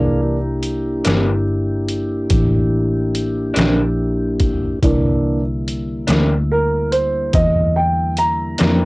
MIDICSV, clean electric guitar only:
0, 0, Header, 1, 2, 480
1, 0, Start_track
1, 0, Tempo, 838106
1, 2766, Time_signature, 12, 3, 24, 8
1, 5069, End_track
2, 0, Start_track
2, 0, Title_t, "Clean electric guitar"
2, 0, Program_c, 0, 27
2, 599, Note_on_c, 0, 58, 70
2, 599, Note_on_c, 0, 62, 74
2, 603, Note_on_c, 0, 52, 62
2, 607, Note_on_c, 0, 48, 54
2, 746, Note_off_c, 0, 58, 0
2, 746, Note_off_c, 0, 62, 0
2, 748, Note_off_c, 0, 52, 0
2, 750, Note_off_c, 0, 48, 0
2, 2027, Note_on_c, 0, 62, 81
2, 2031, Note_on_c, 0, 58, 70
2, 2033, Note_on_c, 0, 52, 63
2, 2037, Note_on_c, 0, 48, 66
2, 2181, Note_off_c, 0, 62, 0
2, 2182, Note_off_c, 0, 58, 0
2, 2183, Note_off_c, 0, 52, 0
2, 2185, Note_off_c, 0, 48, 0
2, 3478, Note_on_c, 0, 62, 62
2, 3483, Note_on_c, 0, 58, 67
2, 3485, Note_on_c, 0, 48, 57
2, 3485, Note_on_c, 0, 52, 60
2, 3626, Note_off_c, 0, 62, 0
2, 3628, Note_off_c, 0, 58, 0
2, 3629, Note_off_c, 0, 48, 0
2, 3630, Note_off_c, 0, 52, 0
2, 4919, Note_on_c, 0, 62, 59
2, 4923, Note_on_c, 0, 58, 63
2, 4926, Note_on_c, 0, 52, 60
2, 4931, Note_on_c, 0, 48, 53
2, 5067, Note_off_c, 0, 62, 0
2, 5069, Note_off_c, 0, 48, 0
2, 5069, Note_off_c, 0, 52, 0
2, 5069, Note_off_c, 0, 58, 0
2, 5069, End_track
0, 0, End_of_file